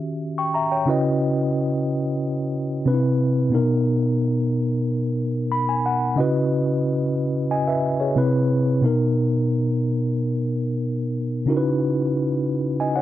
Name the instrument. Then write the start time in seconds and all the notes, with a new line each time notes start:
tine electric piano
Already playing: D#3 C#4 G4
0.38 G5 C#6
0.54 E5 A#5
0.72 C#5 G5
0.85 C#3 C#4 E4 F#4 B4
0.90 D#5
2.85 C3 C4 D4 B4
2.93 E4
3.50 B2 B3 D#4
3.55 A#4
5.52 B5
5.69 G#5
5.86 F#5
6.16 C#3 C#4 E4 F#4 D#5
6.20 B4
7.51 D#5 G#5
7.68 B4 E5
8.00 G#4 C#5
8.16 C3 C4 E4 B4
8.81 B2 B3 D#4
8.86 A#4
11.46 C#3 C#4 D#4 E4 F#4
11.50 A#4
11.57 B4
12.80 D#5 G#5
12.96 C#5 F#5